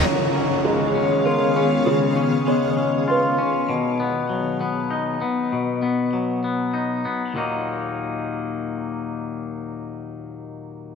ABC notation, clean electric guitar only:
X:1
M:3/4
L:1/8
Q:1/4=98
K:Ebm
V:1 name="Clean electric guitar"
D, D A, D F D | D, D A, D F D | =B,, =B, ^F, B, ^D B, | =B,, =B, ^F, B, ^D B, |
[E,,B,,E,G,B,E]6- | [E,,B,,E,G,B,E]6 |]